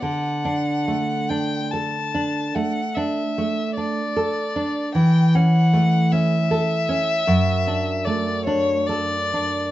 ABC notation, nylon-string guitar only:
X:1
M:12/8
L:1/8
Q:3/8=50
K:D
V:1 name="Nylon-string guitar"
D, D A, D A D A, D A, D A D | E, C A, C A C F,, D A, D A D |]